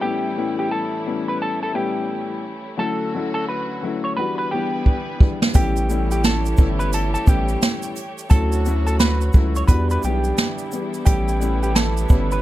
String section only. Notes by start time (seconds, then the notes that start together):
Already playing: E3 G3 E4
0.03 A3 C#4
2.78 D3 F#3 F#4
4.15 D3 G3 B3 E4 B4
5.57 E3 G3 A3 G4 C#5
8.31 F#3 F#4
9.70 E3 G3 B3 D4 E4
11.07 A3 C#5